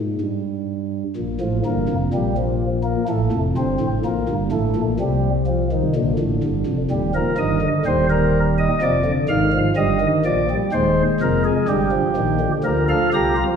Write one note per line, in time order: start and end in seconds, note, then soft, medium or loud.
0.00 0.17 G#2 medium
0.21 1.03 G2 medium
1.16 1.37 A#1 medium
1.16 1.37 A#2 medium
1.41 1.61 A1 medium
1.41 1.61 A2 medium
1.41 1.61 F3 medium
1.65 1.86 G1 medium
1.65 1.86 G2 medium
1.65 1.95 A#3 medium
1.89 2.09 F1 medium
1.89 2.10 F2 medium
2.13 2.96 A#1 medium
2.13 2.96 A#2 medium
2.13 2.34 G3 medium
2.37 2.67 F3 medium
2.84 3.05 A#3 medium
3.08 3.29 A1 medium
3.08 3.29 A2 medium
3.08 3.38 A3 medium
3.32 3.53 F1 medium
3.32 3.53 F2 medium
3.57 3.78 G1 medium
3.57 3.78 G2 medium
3.57 3.87 C4 medium
3.80 4.01 A1 medium
3.80 4.01 A2 medium
4.05 4.25 A#1 medium
4.05 4.25 A#2 medium
4.05 4.34 A#3 medium
4.29 4.49 G1 medium
4.29 4.49 G2 medium
4.52 4.72 A1 medium
4.52 4.73 A2 medium
4.52 4.81 A3 medium
4.76 4.97 A#1 medium
4.76 4.96 A#2 medium
5.00 5.82 C2 medium
5.00 5.82 C3 medium
5.00 5.30 G3 medium
5.47 5.68 F3 medium
5.72 5.92 D#3 medium
5.96 6.16 A#1 medium
5.96 6.16 A#2 medium
5.96 6.77 D3 medium
6.19 6.39 A1 medium
6.19 6.39 A2 medium
6.43 6.63 G1 medium
6.43 6.64 G2 medium
6.67 6.87 F1 medium
6.67 6.87 F2 medium
6.91 7.21 D#1 medium
6.91 7.20 D#2 medium
6.91 7.11 G3 medium
7.15 7.35 F3 medium
7.15 7.35 A#4 medium
7.38 7.67 G1 medium
7.38 7.67 G2 medium
7.38 7.58 D#3 medium
7.38 7.67 D#5 medium
7.62 7.82 D3 medium
7.85 8.68 D#1 medium
7.85 8.68 D#2 medium
7.85 8.68 G3 medium
7.85 8.06 C5 medium
8.10 8.39 A#4 medium
8.58 8.78 D#5 medium
8.82 9.12 F1 medium
8.82 9.11 F2 medium
8.82 9.03 F3 medium
8.82 9.12 D5 medium
9.05 9.26 D3 medium
9.29 9.59 G#1 medium
9.29 9.59 G#2 medium
9.29 9.49 D#3 medium
9.29 9.59 F5 medium
9.53 9.74 F3 medium
9.76 10.06 G1 medium
9.76 10.06 G2 medium
9.76 9.97 G3 medium
9.76 10.06 D#5 loud
10.01 10.21 D#3 medium
10.25 10.55 A#1 medium
10.25 10.55 A#2 medium
10.25 10.46 F3 medium
10.25 10.55 D5 medium
10.50 10.70 G3 medium
10.73 11.03 D#1 medium
10.73 11.02 D#2 medium
10.73 11.56 G#3 medium
10.73 11.03 C5 medium
11.21 11.50 F1 medium
11.21 11.51 F2 medium
11.21 11.42 A#4 medium
11.45 11.65 G#4 medium
11.68 11.98 G1 medium
11.68 11.98 G2 medium
11.68 11.89 G3 medium
11.68 12.51 G4 medium
11.92 12.13 F3 medium
12.16 12.46 A#1 medium
12.16 12.47 A#2 medium
12.16 12.38 D#3 medium
12.41 12.61 D3 medium
12.64 12.94 D2 medium
12.64 12.94 D3 medium
12.64 13.47 F3 medium
12.64 12.85 A#4 medium
12.89 13.10 A4 medium
12.89 13.09 F5 medium
13.13 13.43 C2 medium
13.13 13.43 C3 medium
13.13 13.34 G4 medium
13.13 13.43 A#5 medium
13.37 13.56 F4 medium